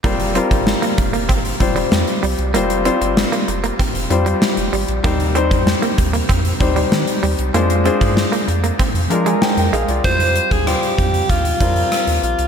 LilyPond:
<<
  \new Staff \with { instrumentName = "Alto saxophone" } { \time 4/4 \key f \dorian \tempo 4 = 96 r1 | r1 | r1 | r1 |
c''8. aes'16 g'4 f'4. f'8 | }
  \new Staff \with { instrumentName = "Grand piano" } { \time 4/4 \key f \dorian << { r1 | r1 | r1 | r2 r8 bes''16 aes''16 <c'' g'' aes''>16 <bes' g''>16 <aes' f''>16 <f' d''>16~ |
<f' d''>16 r2. r8. | } \\ { <g c' f' c''>8 <g c' f' bes'>2 <g c' f' c''>4. | <g c' f' c''>8 <g c' f' c''>4.~ <g c' f' c''>16 r16 <g c' f' c''>4. | <g c' ees' c''>8 <g c' ees' c''>4.~ <g c' ees' c''>16 r16 <g c' ees' c''>4. | <aes d' f' c''>8 <d' f' aes' c''>4.~ <d' f' aes' c''>16 r16 <aes d' f' bes'>4. |
<fis g c' f' c''>4 <g c' f' c''>4. <g c' f' bes'>4. | } >> }
  \new Staff \with { instrumentName = "Clean electric guitar" } { \time 4/4 \key f \dorian bes16 r16 c'16 r8 bes16 r16 bes16 c'16 r8 g16 r8 g16 r16 | bes16 r16 c'16 r8 bes16 r16 bes16 c'16 r8 g16 r8 g16 r16 | bes16 r16 c'16 r8 bes16 r16 bes16 c'16 r8 g16 r8 g16 r16 | bes16 r16 c'16 r8 bes16 r16 bes16 c'16 r8 aes16 r8 aes16 r16 |
r1 | }
  \new Staff \with { instrumentName = "Analog synth bass" } { \clef bass \time 4/4 \key f \dorian f,,8. g,,8 r16 f,,8 g,,8 f,,8 f,16 r16 c,16 c,16 | f,,8. g,,8 r16 f,,8 r16 f,,16 f,8 r16 f,,16 aes,,16 bes,,16 | ees,8. f,8 r16 ees,8 f,8 ees,8 ees16 r16 ees,16 c,16 | f,8. g,8 r16 f,8 r16 f,16 f8 r16 f,16 bes,,16 c,16 |
f,8. ees,8 r16 f,8 ees,8 f,8 r16 ees,16 bes,,16 c,16 | }
  \new DrumStaff \with { instrumentName = "Drums" } \drummode { \time 4/4 <hh bd>16 hh16 hh16 <hh bd>16 sn16 hh16 <hh bd>16 hh16 <hh bd>16 hh16 <hh bd>16 hh16 sn16 hh16 hho16 hh16 | hh16 hh16 hh16 hh16 sn16 hh16 hh16 hh16 <hh bd>16 hh16 hh16 hh16 sn16 hh16 hho16 hh16 | <hh bd>16 hh16 hh16 <hh bd>16 sn16 hh16 <hh bd>16 hh16 <hh bd>16 hh16 <hh bd>16 hh16 sn16 hh16 hho16 hh16 | hh16 hh16 hh16 <hh bd>16 sn16 hh16 hh16 hh16 <hh bd>16 hh16 hh16 hh16 sn16 hh16 hh16 hh16 |
<hh bd>16 hh16 hh16 <hh bd>16 <hh ss>16 hh16 <hh bd>16 hh16 <hh bd>16 hh16 <hh bd>16 hh16 <hh ss>16 hh16 hh16 hh16 | }
>>